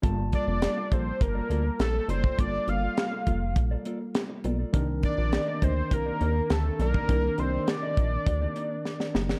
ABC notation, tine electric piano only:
X:1
M:4/4
L:1/8
Q:1/4=102
K:Gm
V:1 name="Tine electric piano"
[G,B,Fa]8 | [G,B,FA]8 | [E,CDB]8 | [E,CDB]8 |]